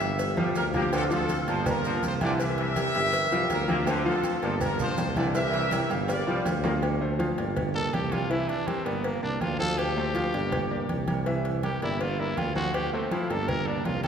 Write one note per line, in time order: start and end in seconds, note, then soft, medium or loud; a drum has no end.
0.00 0.52 G1 loud
0.00 0.31 G3 medium
0.00 0.26 G4 medium
0.00 0.31 G4 medium
0.00 0.25 A#4 medium
0.00 0.30 E5 loud
0.00 0.31 F5 medium
0.00 cowbell medium
0.00 low agogo medium
0.00 maracas soft
0.19 cowbell loud
0.19 high conga soft
0.19 low agogo medium
0.19 maracas medium
0.37 0.67 F3 loud
0.37 0.57 G3 medium
0.37 0.68 F4 loud
0.37 0.68 F5 loud
0.37 high conga loud
0.55 1.42 D2 medium
0.55 0.65 A#4 loud
0.55 cowbell medium
0.55 low timbale medium
0.55 low agogo loud
0.55 maracas medium
0.74 0.89 F3 loud
0.74 0.84 A#3 medium
0.74 0.89 F4 medium
0.74 0.92 G4 medium
0.74 0.90 F5 medium
0.74 low conga medium
0.74 low agogo medium
0.74 maracas soft
0.92 1.23 D3 medium
0.92 1.08 A3 medium
0.92 1.11 C4 medium
0.92 1.11 F4 medium
0.92 1.08 A4 medium
0.92 1.02 A4 loud
0.92 1.08 C5 medium
0.92 cowbell loud
0.92 high conga soft
0.92 low agogo loud
0.92 maracas medium
1.11 1.41 F3 loud
1.11 1.63 C4 medium
1.11 1.41 F4 medium
1.11 1.63 F4 medium
1.11 1.46 A4 loud
1.11 1.41 F5 loud
1.11 high conga soft
1.11 maracas medium
1.29 cowbell medium
1.29 high conga medium
1.29 low agogo medium
1.29 maracas medium
1.47 1.99 G1 loud
1.47 1.67 F3 medium
1.47 1.63 A#3 medium
1.47 1.63 A#4 medium
1.47 1.67 C5 loud
1.47 1.63 D5 medium
1.47 cowbell medium
1.47 high conga soft
1.47 low agogo medium
1.47 maracas soft
1.66 1.81 A#3 medium
1.66 2.37 D4 medium
1.66 2.37 F4 medium
1.66 1.82 A#4 medium
1.66 2.01 A#4 loud
1.66 1.82 D5 medium
1.66 cowbell loud
1.66 high conga soft
1.66 low conga loud
1.66 low agogo loud
1.66 maracas medium
1.84 2.04 F3 medium
1.84 2.15 A#3 medium
1.84 2.15 A#4 medium
1.84 2.15 D5 medium
1.84 high conga soft
1.84 maracas medium
2.03 2.89 C2 loud
2.03 2.12 C5 loud
2.03 cowbell medium
2.03 high conga medium
2.03 low agogo medium
2.03 maracas medium
2.21 2.41 D3 medium
2.21 2.37 E3 medium
2.21 2.37 E4 medium
2.21 2.31 D5 loud
2.21 2.37 E5 medium
2.21 cowbell medium
2.21 high conga medium
2.21 low agogo loud
2.21 maracas soft
2.40 2.70 E3 medium
2.40 2.71 E4 medium
2.40 3.47 G4 medium
2.40 3.47 A#4 medium
2.40 3.47 E5 loud
2.40 2.71 E5 medium
2.40 cowbell loud
2.40 high conga soft
2.40 maracas medium
2.58 3.02 E3 medium
2.58 cowbell medium
2.58 high conga soft
2.76 2.92 G3 medium
2.76 2.92 G4 medium
2.76 2.92 A#4 medium
2.76 cowbell medium
2.76 high conga medium
2.76 low agogo loud
2.76 maracas medium
2.94 3.29 G1 loud
2.94 3.26 G3 medium
2.94 3.26 G4 medium
2.94 3.26 E5 medium
2.94 cowbell medium
2.94 high conga soft
2.94 low agogo medium
2.94 maracas soft
3.13 cowbell loud
3.13 high conga soft
3.13 low agogo medium
3.13 maracas medium
3.31 3.48 C2 medium
3.31 3.62 F3 medium
3.31 3.51 G3 medium
3.31 3.62 F4 medium
3.31 3.63 F5 loud
3.31 high conga soft
3.31 maracas medium
3.49 4.09 D2 loud
3.49 3.68 A#4 loud
3.49 cowbell medium
3.49 high conga medium
3.49 low timbale medium
3.49 low agogo loud
3.49 maracas medium
3.68 3.84 F3 medium
3.68 3.78 A#3 medium
3.68 4.05 C4 medium
3.68 3.84 F4 medium
3.68 4.05 G4 loud
3.68 3.84 F5 medium
3.68 high conga medium
3.68 low agogo medium
3.68 maracas soft
3.87 4.18 D3 loud
3.87 4.02 A3 medium
3.87 4.02 A4 medium
3.87 4.02 C5 medium
3.87 cowbell loud
3.87 high conga soft
3.87 low agogo loud
3.87 maracas medium
4.05 4.36 F3 loud
4.05 4.57 C4 medium
4.05 4.36 F4 loud
4.05 4.57 F4 medium
4.05 4.40 A4 loud
4.05 4.36 F5 loud
4.05 high conga soft
4.24 cowbell medium
4.24 high conga medium
4.24 low agogo medium
4.24 maracas medium
4.42 4.94 G1 loud
4.42 4.62 F3 medium
4.42 4.58 A#3 medium
4.42 4.60 A4 medium
4.42 4.58 A#4 medium
4.42 4.58 D5 medium
4.42 cowbell medium
4.42 high conga soft
4.42 low agogo medium
4.42 maracas soft
4.61 4.76 A#3 medium
4.61 5.31 D4 medium
4.61 4.79 F4 medium
4.61 4.76 A#4 medium
4.61 4.79 A#4 loud
4.61 4.77 D5 medium
4.61 cowbell loud
4.61 high conga soft
4.61 low conga medium
4.61 low agogo loud
4.61 maracas medium
4.79 4.98 F3 medium
4.79 5.10 A#3 medium
4.79 5.31 F4 medium
4.79 5.10 A#4 medium
4.79 5.14 C5 loud
4.79 5.10 D5 medium
4.79 high conga soft
4.79 low conga medium
4.79 maracas medium
4.97 5.84 C2 loud
4.97 cowbell medium
4.97 high conga medium
4.97 low timbale medium
4.97 low agogo medium
4.97 maracas medium
5.15 5.35 D3 medium
5.15 5.32 E3 medium
5.15 5.32 E4 loud
5.15 5.25 D5 loud
5.15 5.32 E5 medium
5.15 cowbell medium
5.15 high conga medium
5.15 low agogo loud
5.15 maracas soft
5.34 5.65 E3 medium
5.34 5.65 E4 medium
5.34 6.05 G4 medium
5.34 6.05 A#4 medium
5.34 5.65 E5 medium
5.34 5.87 E5 loud
5.34 cowbell loud
5.34 high conga soft
5.34 high timbale medium
5.34 maracas medium
5.52 5.96 E3 medium
5.52 cowbell medium
5.52 high conga soft
5.52 high timbale medium
5.71 5.87 G3 medium
5.71 5.87 G4 medium
5.71 5.88 A#4 medium
5.71 cowbell medium
5.71 high conga medium
5.71 high timbale medium
5.71 low agogo loud
5.71 maracas medium
5.90 6.25 G1 loud
5.90 6.20 G3 medium
5.90 6.20 G4 medium
5.90 6.21 F5 medium
5.90 cowbell medium
5.90 high conga soft
5.90 low timbale medium
5.90 low agogo medium
5.90 maracas soft
6.08 6.79 F4 medium
6.08 6.79 A#4 medium
6.08 6.43 D5 medium
6.08 cowbell loud
6.08 high conga soft
6.08 low timbale medium
6.08 low agogo medium
6.08 maracas medium
6.26 6.44 C2 medium
6.26 6.57 F3 medium
6.26 6.46 G3 medium
6.26 6.58 F4 medium
6.26 6.58 F5 medium
6.26 high conga soft
6.45 7.32 D2 loud
6.45 cowbell medium
6.45 high conga medium
6.45 low timbale medium
6.45 low agogo loud
6.45 maracas medium
6.64 6.79 F3 medium
6.64 6.73 A#3 medium
6.64 6.79 F4 medium
6.64 6.79 F5 medium
6.64 high conga medium
6.64 low timbale loud
6.64 low agogo medium
6.64 maracas soft
6.82 cowbell loud
6.82 high conga soft
6.82 low agogo loud
7.01 7.16 A3 medium
7.01 7.16 A4 medium
7.01 7.16 C5 medium
7.01 high conga soft
7.19 7.34 F3 medium
7.19 7.34 F4 medium
7.19 7.35 F5 medium
7.19 cowbell medium
7.19 high conga medium
7.19 low agogo medium
7.37 7.89 G1 loud
7.37 7.68 A#3 medium
7.37 7.68 A#4 medium
7.37 7.69 D5 medium
7.37 cowbell medium
7.37 high conga soft
7.37 low agogo medium
7.56 cowbell loud
7.56 high conga soft
7.56 low conga medium
7.56 low agogo loud
7.75 8.05 A#3 medium
7.75 7.96 A4 loud
7.75 8.05 A#4 medium
7.75 8.05 D5 medium
7.75 high conga soft
7.93 8.53 C2 medium
7.93 8.14 G4 medium
7.93 cowbell medium
7.93 high conga medium
7.93 low timbale medium
7.93 low agogo medium
8.12 8.27 G3 medium
8.12 8.32 F4 medium
8.12 8.27 G4 medium
8.12 8.28 A#4 medium
8.12 cowbell medium
8.12 high conga medium
8.12 low agogo loud
8.30 8.60 E3 medium
8.30 8.61 E4 medium
8.30 8.50 E4 medium
8.30 8.61 E5 medium
8.30 cowbell loud
8.30 high conga soft
8.49 8.69 D4 medium
8.49 cowbell medium
8.49 high conga soft
8.67 8.83 G3 medium
8.67 8.87 C4 medium
8.67 8.83 G4 medium
8.67 8.83 A#4 medium
8.67 cowbell medium
8.67 high conga loud
8.67 low agogo loud
8.85 9.20 G1 loud
8.85 9.16 A#3 medium
8.85 9.06 B3 medium
8.85 9.16 A#4 medium
8.85 9.16 D5 medium
8.85 cowbell medium
8.85 high conga soft
8.85 low agogo medium
9.04 9.22 A#3 medium
9.04 cowbell loud
9.04 high conga soft
9.04 low agogo medium
9.23 9.40 C2 medium
9.23 9.53 A#3 medium
9.23 9.43 D4 medium
9.23 9.53 A#4 medium
9.23 9.53 D5 medium
9.23 high conga soft
9.41 10.28 D2 loud
9.41 9.59 F4 medium
9.41 cowbell medium
9.41 high conga medium
9.41 low timbale medium
9.41 low agogo loud
9.59 9.90 F3 medium
9.59 9.90 F4 medium
9.59 9.80 A4 loud
9.59 9.90 F5 medium
9.59 high conga medium
9.59 low agogo medium
9.78 10.89 G4 medium
9.78 cowbell loud
9.78 high conga soft
9.78 low agogo loud
9.96 10.12 A3 medium
9.96 10.12 A4 medium
9.96 10.12 C5 medium
9.96 high conga soft
10.14 10.30 F3 medium
10.14 10.30 F4 medium
10.14 10.30 F5 medium
10.14 cowbell medium
10.14 high conga medium
10.14 low agogo medium
10.34 10.86 G1 loud
10.34 10.64 A#3 medium
10.34 10.64 A#4 medium
10.34 10.64 D5 medium
10.34 cowbell medium
10.34 high conga soft
10.34 low agogo medium
10.52 cowbell loud
10.52 high conga soft
10.52 low conga medium
10.52 low agogo loud
10.70 11.01 A#3 medium
10.70 11.01 A#4 medium
10.70 11.01 D5 medium
10.70 high conga soft
10.89 11.76 C2 loud
10.89 cowbell medium
10.89 high conga medium
10.89 low agogo medium
11.07 11.23 G3 medium
11.07 11.23 G4 medium
11.07 11.23 A#4 medium
11.07 cowbell medium
11.07 high conga medium
11.07 low agogo loud
11.26 11.57 E3 medium
11.26 11.57 E4 medium
11.26 11.57 E5 medium
11.26 cowbell loud
11.26 high conga soft
11.45 cowbell medium
11.45 high conga soft
11.63 11.79 G3 medium
11.63 11.81 G4 medium
11.63 11.79 G4 medium
11.63 11.79 A#4 medium
11.63 cowbell medium
11.63 high conga medium
11.63 low agogo loud
11.82 12.34 G1 loud
11.82 12.13 A#3 medium
11.82 12.03 E4 medium
11.82 12.13 A#4 medium
11.82 12.13 D5 medium
11.82 cowbell medium
11.82 high conga soft
11.82 low agogo medium
12.00 12.21 F4 medium
12.00 cowbell loud
12.00 high conga soft
12.00 low agogo medium
12.19 12.50 A#3 medium
12.19 12.39 E4 medium
12.19 12.50 A#4 medium
12.19 12.50 D5 medium
12.19 high conga soft
12.37 12.97 D2 medium
12.37 12.55 F4 medium
12.37 cowbell medium
12.37 high conga medium
12.37 low timbale medium
12.37 low agogo loud
12.56 12.86 F3 medium
12.56 12.86 F4 medium
12.56 12.76 F#4 medium
12.56 12.87 F5 medium
12.56 high conga medium
12.56 low agogo medium
12.74 12.93 G4 medium
12.74 cowbell loud
12.74 high conga soft
12.74 low agogo loud
12.93 13.08 A3 medium
12.93 13.13 C4 medium
12.93 13.09 A4 medium
12.93 13.09 C5 medium
12.93 high conga soft
13.11 13.27 F3 loud
13.11 13.31 E4 medium
13.11 13.27 F4 medium
13.11 13.27 F5 medium
13.11 cowbell medium
13.11 high conga loud
13.11 low agogo medium
13.30 13.82 G1 loud
13.30 13.61 A#3 medium
13.30 13.50 A4 loud
13.30 13.61 A#4 medium
13.30 13.61 D5 medium
13.30 cowbell medium
13.30 high conga soft
13.30 low agogo medium
13.48 13.69 A#4 medium
13.48 cowbell loud
13.48 high conga soft
13.48 low conga medium
13.48 low agogo loud
13.67 13.98 A#3 medium
13.67 13.87 D4 medium
13.67 13.98 A#4 medium
13.67 13.98 D5 medium
13.67 high conga soft
13.85 14.07 C2 medium
13.85 14.03 F4 medium
13.85 cowbell medium
13.85 high conga medium
13.85 low timbale medium
13.85 low agogo medium
14.04 14.07 G3 medium
14.04 14.07 G4 medium
14.04 14.07 A4 loud
14.04 cowbell medium
14.04 high conga medium
14.04 low agogo loud